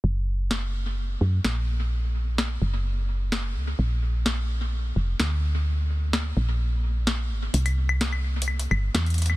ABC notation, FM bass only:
X:1
M:4/4
L:1/8
Q:1/4=128
K:A#phr
V:1 name="FM bass" clef=bass
F,,,4- F,,, F,, A,,,2- | A,,,3 F,,,4 C,, | A,,,4- A,,, E,,, =D,,2- | =D,,3 A,,,4 G,,, |
=C,,4- C,, =G,,, =E,,2 |]